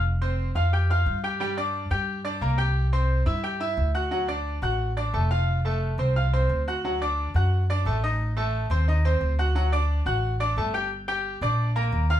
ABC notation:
X:1
M:4/4
L:1/8
Q:1/4=177
K:Gm
V:1 name="Grand piano"
z [Ccc']2 [Fff'] [Ggg'] [Fff']2 [Ggg'] | [G,Gg] [Ddd']2 [Ggg']2 [Ddd'] [B,Bb] [Ggg']- | [Ggg'] [Ccc']2 [=E=e=e'] [Ggg'] [Eee']2 [^F^f^f'] | [^F,^F^f] [Ddd']2 [Ff^f']2 [Ddd'] [A,Aa] [=F=f=f']- |
[Fff'] [A,Aa]2 [Ccc'] [Fff'] [Ccc']2 [^F^f^f'] | [^F,^F^f] [Ddd']2 [Ff^f']2 [Ddd'] [A,Aa] [Eee']- | [Eee'] [A,Aa]2 [Ccc'] [Eee'] [Ccc']2 [^F^f^f'] | [^F,^F^f] [Ddd']2 [Ff^f']2 [Ddd'] [A,Aa] [Ggg'] |
z [Ggg']2 [Ddd']2 [B,Bb]2 [Fff'] |]
V:2 name="Upright bass" clef=bass
F,,,3 F,,3 G,,2- | G,,3 G,,3 C,,2- | C,,3 G,,3 D,,2- | D,,3 A,,,3 F,,,2- |
F,,,3 C,,3 D,,2- | D,,3 ^F,,3 A,,,2- | A,,,3 E,,3 D,,2- | D,,3 A,,,3 G,,,2- |
G,,,3 B,,,3 E,,2 |]